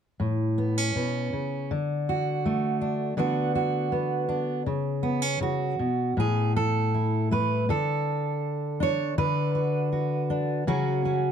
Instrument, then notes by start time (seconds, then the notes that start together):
steel-string acoustic guitar
0.20 A2
0.58 B3
0.78 C#4
0.95 B2
1.33 C#3
1.71 D3
2.09 F#4
2.46 A3
2.81 D4
3.17 D3 B3 D4 F#4
3.55 F#4
3.92 B3
4.29 D4
4.66 C#3
5.03 B3
5.22 C#4
5.40 C#3 F#4
5.79 B2
6.17 A2 G#4
6.57 A4
6.94 E4
7.31 A3 B4
7.69 D3 A4
8.80 D4 C#5
9.18 D3 B4
9.55 F#4
9.92 F#4
10.30 D4
10.67 C#3 F#3 C#4 F#4
11.05 C#4